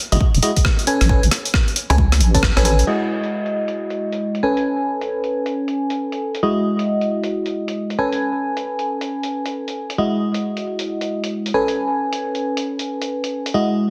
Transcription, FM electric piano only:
0.12 G#3 E4 F#4 D#5
0.43 G#3 E4 F#4 D#5
0.87 C#4 A4 B4 G#5
1.09 C#4 A4 B4 G#5
1.90 C#4 A4 B4 G#5
2.34 C#4 A4 B4 A5
2.57 C#4 A4 B4 G#5
2.65 C#4 A4 B4 G#5
2.87 G#3 E4 F#4 D#5
4.43 C#4 A4 B4 G#5
6.43 G#3 E4 F#4 D#5
7.99 C#4 A4 B4 G#5
9.98 G#3 E4 F#4 D#5
11.54 C#4 A4 B4 G#5
13.54 G#3 E4 F#4 D#5

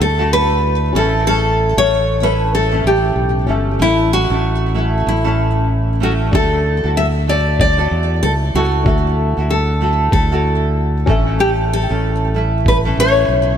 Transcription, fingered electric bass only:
0.01 D2
0.95 A1
1.77 A1
2.84 A1
3.16 B1
3.48 G1
3.80 A1
4.30 A1
5.07 A1
6.33 D2
6.84 D2
7.91 E2
8.23 C#2
8.55 C#2
8.86 D2
9.38 D2
10.12 D2
11.07 A1
11.91 A1
12.97 A1
13.28 B1

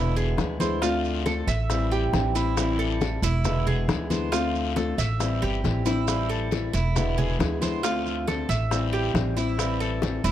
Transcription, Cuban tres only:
Already playing: E4
0.16 G#4
0.60 C5
0.82 F4
1.26 A4
1.48 E5
1.92 G4
2.35 E4
2.79 A4
3.23 E4
3.67 G#4
4.10 C5
4.32 F4
4.76 A4
4.98 E5
5.42 G4
5.86 E4
6.29 A4
6.73 E4
7.18 G#4
7.62 C5
7.83 F4
8.28 A4
8.49 E5
8.93 G4
9.37 E4
9.80 A4
10.24 E4

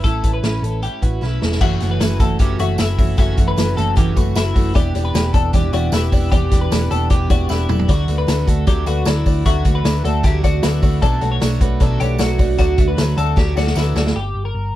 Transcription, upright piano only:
1.61 F#4 A4 E5
1.80 F#4 A4 F#5
2.01 F#4 A4 E5
2.20 F#4 A4 E5
2.40 F#4 A4 B4
2.59 F#4 A4 E5
2.79 F#4 A4 E5
2.98 F#4 A4 E5
3.18 F#4 A4 E5
3.38 F#4 A4 E5
3.57 F#4 A4 B4
3.77 F#4 A4 E5
3.97 F#4 A4 B4
4.16 F#4 A4 B4
4.36 F#4 A4 E5
4.55 F#4 A4 B4
4.75 E4 G4 D5
4.95 E4 G4 D5
5.15 E4 G4 D5
5.34 E4 G4 D5
5.53 E4 G4 D5
5.73 E4 G4 D5
5.93 E4 G4 B4
6.12 E4 G4 D5
6.31 E4 G4 D5
6.51 E4 G4 B4
6.71 E4 G4 D5
6.90 E4 G4 D5
7.10 E4 G4 D5
7.30 E4 G4 D5
7.49 E4 G4 B4
7.69 E4 G4 A4
7.88 F#4 A4 D5
8.08 F#4 A4 B4
8.27 F#4 A4 B4
8.47 F#4 A4 B4
8.67 F#4 A4 D5
8.86 F#4 A4 B4
9.06 F#4 A4 D5
9.26 F#4 A4 D5
9.45 F#4 A4 E5
9.65 F#4 A4 B4
9.84 F#4 A4 D5
10.04 F#4 A4 D5 F#5
10.24 F#4 A4 E5 A5
10.43 F#4 A4 D5
10.63 F#4 A4 B4 B5
10.82 F#4 A4 D5 C#6
11.02 A4 B4 D5
11.21 A4 B4 D5
11.41 A4 B4 D5
11.61 A4 B4 C#5
11.80 A4 B4 D5
11.99 A4 B4 C#5
12.19 A4 B4 D5
12.39 A4 B4 D5
12.58 F#4 A4 D5
12.78 F#4 A4 E5
12.97 F#4 A4 C#5
13.17 F#4 A4 D5
13.37 F#4 A4 D5
13.56 F#4 A4 D5
13.76 F#4 A4 B4 F#5
13.96 F#4 A4 D5 A5

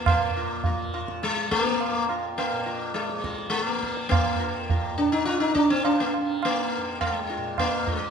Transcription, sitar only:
0.08 A#3
0.37 F4
0.66 F4
0.94 F4
1.23 G#3
1.51 A#3
2.10 F4
2.38 A#3
2.66 F4
2.94 G#3
3.24 F4
3.50 G#3
3.69 A#3
4.09 A#3
4.39 F4
4.70 F4
4.98 D4
5.12 D#4
5.25 F4
5.40 D#4
5.55 D4
5.70 C4
5.85 D4
6.00 A#3
6.45 A#3
7.01 G#3
7.30 F4
7.59 A#3
7.87 F4
7.97 G#3

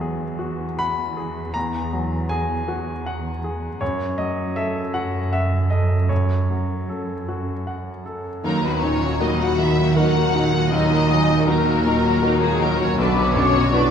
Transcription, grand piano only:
Already playing: E2 F#3 E5
0.01 G#4
0.39 F#4
0.79 F#5 B5
1.17 G#4
1.54 E2 A#5
1.93 F#3
2.29 G#4 G#5
2.68 F#4
3.06 F#5
3.44 G#4
3.81 F#2 C#5
4.18 F#3 D#5
4.56 A4 E5
4.94 F#4 F#5
5.33 E5 F#5
5.70 A4 D#5
6.09 F#2 C#5
6.50 F#3
6.89 A4
7.28 F#4
7.67 F#5
8.06 A4
8.44 D#2
8.83 A#2
9.20 A#3 F#4
9.59 F#3
9.96 F#4 A#4
10.34 A#2
10.72 D#2
11.10 F#3
11.47 F#4 A#4
11.85 A#2
12.22 F#4 A#4
12.60 F#3
12.98 B1
13.36 F#2
13.73 F#4 B4

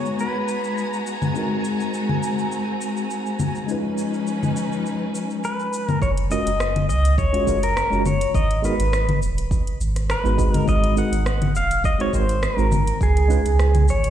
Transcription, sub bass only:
6.02 F#1
6.47 F#1
6.89 C#2
7.47 F#1
7.92 F#1
8.35 G#1
8.80 G#1
9.22 D#1
9.80 G#1
10.25 G#1
10.68 G#1
11.12 G#1
11.55 D#1
12.13 G#1
12.58 G#1
13.01 C#2
13.45 C#2
13.88 G#1

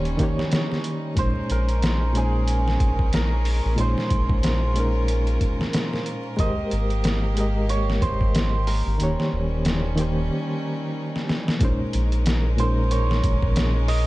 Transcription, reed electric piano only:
Already playing: D#3 A#3 C#4 G4 C#5
0.17 D#3 A#3 G4
0.23 C#5
1.15 A#2 G#3 C#4
1.19 D#4 C5
2.12 A#2 G#3 C#4
2.17 D#4 C5
3.76 A#2 G#3 C#4
3.80 D#4 C5
4.74 A#2 G#3 C#4
4.78 D#4 A#4
6.37 G#3 G4 A#4
6.43 C5
7.34 G#3 G4 A#4
7.40 D#5
8.98 D#3 A#3 G4
9.03 C#5
9.95 D#3 A#3 G4
10.01 C5
11.59 A#2 G#3 C#4
11.63 D#4 C5
12.56 A#2 G#3 C#4
12.61 D#4 A#4

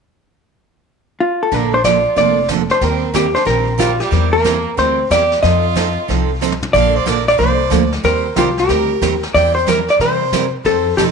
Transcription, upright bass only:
1.52 A#1
2.16 F1
2.81 D#2
3.46 A#1
4.12 E2
4.77 D2
5.10 E2
5.43 F2
6.09 C2
6.74 A#1
7.06 A#1
7.39 C2
7.71 D2
8.04 D#2
8.36 C2
8.69 D2
9.01 D#2
9.34 E2
9.99 C3
10.65 F2
10.98 F1

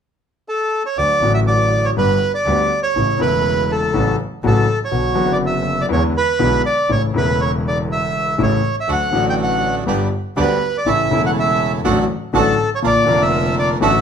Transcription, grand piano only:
0.98 D2 D3 F#3 A3 F#4
1.20 A1 A2 D3 F#3 A3
1.25 F#4
1.97 G1 G2 D3 G3 B3 G4
2.46 D2 D3 G3 B3 G4
2.96 A1 A2 C#3 E3 A3 E4
3.18 E1 E2 C#3 E3 A3 E4
3.93 A1 A2 C#3 F#3 A3 F#4
4.43 A1 A2 C#3 F#3 A3 F#4
4.91 B1 B2 D3 F#3 B3 F#4
5.14 F#1 F#2 D3 F#3 B3 F#4
5.89 E2 D3 E3 G#3 B3 E4
6.39 B1 B2 D3 G#3 B3 E4
6.89 A1 A2 C#3 E3 A3 E4
7.13 E1 E2 C#3 E3 A3 E4
8.38 A1 A2 C#3 E3 A3 E4
8.87 D2 D3 F#3 A3 F#4
9.11 A1 A2 D3 F#3 A3
9.15 F#4
9.86 G1 G2 D3 G3 B3 G4
10.36 D2 D3 G3 B3 G4
10.86 A1 A2 C#3 E3 A3 E4
11.09 E1 E2 C#3 E3 A3
11.13 E4
11.85 A1 A2 D3 F#3 A3 F#4
12.33 A1 A2 D3 F#3 A3 F#4
12.82 A#1 A#2 D3 F3 A#3 F4
13.04 F1 F2 D3 F3 A#3
13.09 F4
13.80 A1 A2 D3 F#3 A3 F#4

